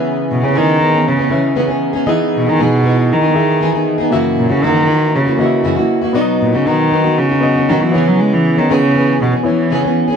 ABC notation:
X:1
M:4/4
L:1/16
Q:1/4=118
K:C#dor
V:1 name="Reed electric piano"
[CBe]6 z4 [CBe]6 | [EGd]8 z2 [Gde]6 | [A,Fe]8 z2 [A,Fde]6 | [B,F=d^d]8 z2 [B,Fd]4 [B,Ec]2- |
[B,Ec]6 z4 [B,Ec]6 |]
V:2 name="Steel-string acoustic guitar"
[C,E,B,CG]3 [B,CG] [C,E,B,CG]2 [E,B,CG] [B,CG]2 [B,CG] [E,B,CG]2 [C,E,B,CG] [B,CG]2 [B,CG] | [E,B,DG]3 [B,DG] [E,B,DG]2 [E,B,DG]3 [B,DG] [E,B,DG]2 [E,B,DG] [B,DG]2 [B,DG] | [F,,C,E,A,EF]3 [E,A,EF] [F,,C,E,A,EF]2 [E,A,EF]3 [E,A,EF] [E,A,EF]2 [F,,C,E,A,EF] [E,A,EF]2 [E,A,EF] | [B,,F,B,DF]3 [B,DF] [B,,F,B,DF]2 [F,B,DF] [B,DF]2 [B,DF] [F,B,DF] [B,DF] [B,,F,B,DF] [B,DF] [C,E,B,CG]2- |
[C,E,B,CG]3 [B,CG] [C,E,B,CG]2 [E,B,CG]3 [B,CG] [E,B,CG]2 [C,E,B,CG] [B,CG]2 [B,CG] |]
V:3 name="Cello" clef=bass
z2 B,, C, D,4 C,4 z4 | z2 B,, D, B,,4 D,6 z2 | z2 A,, C, D,4 C,4 z4 | z2 A,, C, D,4 C,4 D, E,2 F, |
G, E,2 D, C,4 B,,2 E,4 z2 |]